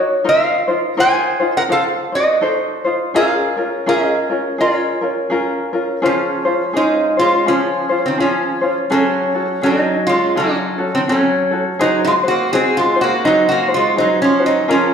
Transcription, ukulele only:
Already playing: D#4 F#4 C#5
0.24 D#4 F4 A#4 C5
0.68 D#4 F4 C5
0.97 D#4 F4 A#4 C5
1.40 D#4 F4 C5
1.68 D#4 F4 A4 C5
2.12 D#4 C5
2.41 D#4 A4 C5
2.85 D#4 F4 C5
3.14 C#4 F4 G#4 A#4
3.57 C#4 F4 A#4
3.86 C#4 F4 G#4 A#4
4.30 C#4 F4 A#4
4.58 C#4 F4 G#4 A#4
5.01 C#4 F4 A#4
5.30 C#4 F4 G#4 A#4
5.73 C#4 F4 A#4
6.02 C#4 F4 G#4 C5
6.45 C#4 F4 C5
6.73 C#4 F4 G#4 C5
7.17 C#4 F4 C5
7.46 C#4 F4 G#4 C5
7.89 C#4 F4 C5
8.18 C#4 F4 G#4 C5
8.61 C#4 F4 C5
8.90 C#4 F#4 G#4 A4
9.34 C#4 F#4 A4
9.62 C#4 F#4 G#4 A4
10.08 C#4
10.35 C#4 F#4 G#4 A4
10.78 C#4 F#4 A4
11.07 C#4 F#4 G#4 A4
11.51 C#4 F#4 A4
11.79 D#4 F#4 G#4 C5
12.23 D#4 F#4 C5
12.52 D#4 F#4 G#4 C5
12.96 D#4 F#4 C5
13.24 D#4 F#4 G#4 C5
13.68 D#4 F#4 C5
13.96 D#4 F#4 G#4 C5
14.39 D#4 F#4 C5
14.68 C#4 F4 G#4 A#4

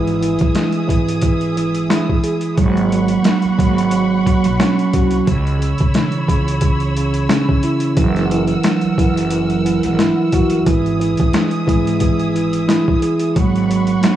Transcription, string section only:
Already playing: G#4 E5 D#6
2.58 A#3 F#5 B5 C#6
5.28 C#5 B5 E6
7.97 A#4 F#5
10.67 G#4 E5 D#6
13.36 A#3 F#5 B5 C#6

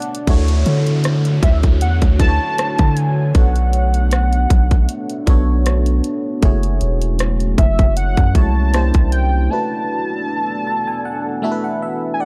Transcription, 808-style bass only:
0.28 D2
0.66 D3
1.43 D2
1.82 E2
2.02 D2
2.79 D3
3.35 B1
4.51 B1
5.27 B1
6.43 F#1
6.82 E1
7.58 F#1
7.79 F#1
8.18 F#2
8.35 C2
8.95 C2

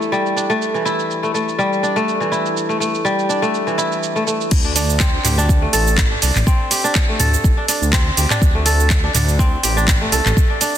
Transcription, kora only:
Already playing: E3 G3 A3 D4 E4
0.12 G3
0.37 D4
0.50 A3
0.74 E3
0.85 E4
1.23 A3
1.34 A3
1.59 G3
1.83 D4
1.96 A3
2.20 E3
2.32 E4
2.69 A3
2.80 A3
3.05 G3
3.29 D4
3.42 A3
3.67 E3
3.78 E4
4.16 A3
4.27 A3
4.65 D4
4.76 D4
5.00 C4
5.24 G4
5.38 D4
5.62 A3
5.73 A4
6.11 D4
6.22 D4
6.47 C4
6.71 G4
6.84 D4
7.09 A3
7.20 A4
7.57 D4
7.69 D4
7.93 C4
8.17 G4
8.30 D4
8.55 A3
8.66 A4
9.04 D4
9.15 D4
9.39 C4
9.64 G4
9.77 D4
10.01 A3
10.12 A4
10.50 D4
10.61 D4

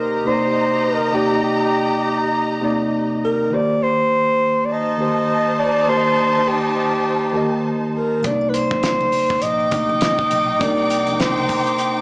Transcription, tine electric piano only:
Already playing: C3 A#3 D#4 D5
0.24 C3 A#3 D#4 D5
1.13 C3 A#3 D#4 D5
2.61 C3 A#3 D#4 D5
3.51 D#3 A#3 G4 C5
4.98 D#3 A#3 G4 C5
5.87 D#3 A#3 G4 D5
5.97 D#5
7.33 D#3 A#3 G4
7.37 D#5
8.21 C3 A#3 D4 D5
8.30 D#4
9.71 C3 A#3 D#4 D#5
10.59 C3 A#3 D4 A#4
10.67 D#4

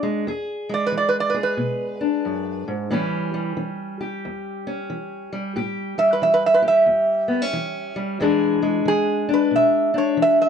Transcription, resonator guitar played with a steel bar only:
0.74 D5
0.86 B4
0.98 D5
1.09 B4
1.20 D5
1.30 B4
1.43 B4
5.99 E5
6.13 B4
6.23 E5
6.34 B4
6.46 E5
6.54 B4
6.68 E5
8.88 G#4
9.34 B4
9.56 E5
9.98 C#5
10.22 E5
10.42 E5

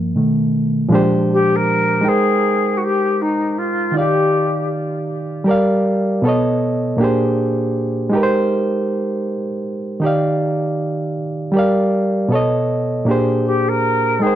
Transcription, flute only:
1.33 G4
1.56 A#4
2.08 G#4
2.77 F#4
2.84 G4
3.22 D#4
3.58 F4
3.98 G4
13.46 G4
13.69 A#4
14.22 G#4

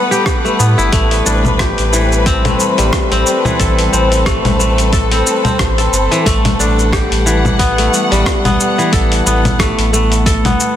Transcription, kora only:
Already playing: E3 A3 B3 A4
0.11 G4
0.26 G4
0.45 A3
0.59 B3
0.78 E4
0.92 A3
1.26 D4
1.59 G4
1.93 E3
2.26 C4
2.45 A3
2.78 G3
3.12 C4
3.45 E3
3.59 A4
3.93 C4
4.26 A3
4.60 A3
4.93 A4
5.11 C4
5.45 C4
5.78 A4
6.11 E3
6.26 A3
6.60 D4
6.93 G4
7.26 E3
7.59 B3
7.78 A3
8.11 G3
8.45 B3
8.78 E3
8.93 A4
9.26 B3
9.60 A3
9.93 A3
10.26 A4
10.45 B3

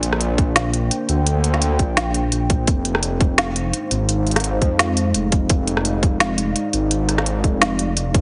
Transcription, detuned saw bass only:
Already playing: A#1
1.09 D2
1.79 A#1
2.32 A#1
2.68 F1
3.91 G#1
4.62 F2
5.15 F1
5.50 F1
6.73 G#1
7.44 F1
8.15 G1

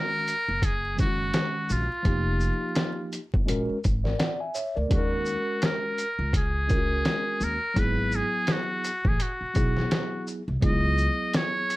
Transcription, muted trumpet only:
Already playing: A#4
0.65 G#4
1.00 F#4
1.72 F4
4.94 F#4
5.65 A#4
6.36 G#4
7.43 A#4
7.79 B4
8.16 G#4
8.52 F#4
9.08 G#4
9.22 F#4
10.64 D#5
11.36 C#5

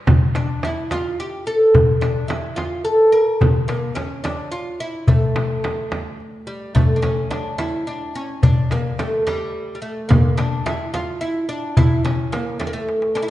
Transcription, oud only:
0.35 D4
0.65 E4
0.92 F4
1.20 G4
1.47 A4
2.01 D4
2.28 E4
2.56 F4
2.85 A4
3.12 A#4
3.68 A#3
3.95 C#4
4.24 D4
4.52 F4
4.80 E4
5.08 A3
6.47 G3
6.75 A3
6.96 D4
7.02 C#4
7.31 D4
7.58 E4
7.87 D4
8.15 C#4
8.43 D4
8.72 A#3
8.99 A3
9.27 G3
9.75 G3
9.82 A3
10.09 A#3
10.37 D4
10.66 E4
10.94 F4
11.21 E4
11.49 D4
11.77 E4
12.04 C#4
12.32 A#3
12.60 A3
12.67 A#3
12.73 A3
13.15 D4
13.22 E4

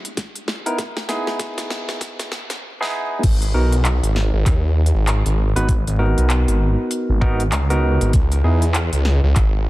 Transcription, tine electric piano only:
0.66 B3 D#4 E4 A#4
1.09 B3 D#4 E4 G#4
2.80 B3 D#4 E4 G#4
3.54 B3 D#4 F#4 A#4
5.56 B3 D#4 F#4 B4
5.99 B3 D#4 F#4 A#4
7.21 B3 D#4 F#4 A#4
7.70 B3 D#4 F#4 A#4
8.44 B3 D#4 E4 G#4

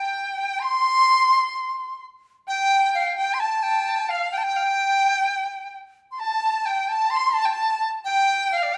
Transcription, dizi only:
Already playing: G5
0.35 G5
0.59 C6
2.48 G5
2.95 F5
3.19 G5
3.34 C6
3.40 A5
3.63 G5
4.09 F5
4.31 G5
4.38 A5
4.43 G5
6.11 C6
6.20 A5
6.65 G5
6.89 A5
7.10 C6
7.34 A5
8.05 G5
8.52 F5
8.74 G5

